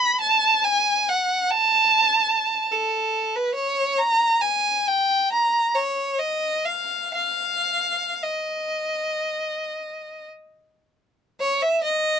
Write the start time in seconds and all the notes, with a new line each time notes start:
Already playing: B5
0.20 A5
0.64 G#5
1.08 F#5
1.51 A5
2.72 A4
3.36 B4
3.55 C#5
3.98 A#5
4.41 G#5
4.87 G5
5.32 A#5
5.75 C#5
6.19 D#5
6.65 F5
7.14 F5
8.23 D#5
11.40 C#5
11.62 E5
11.84 D#5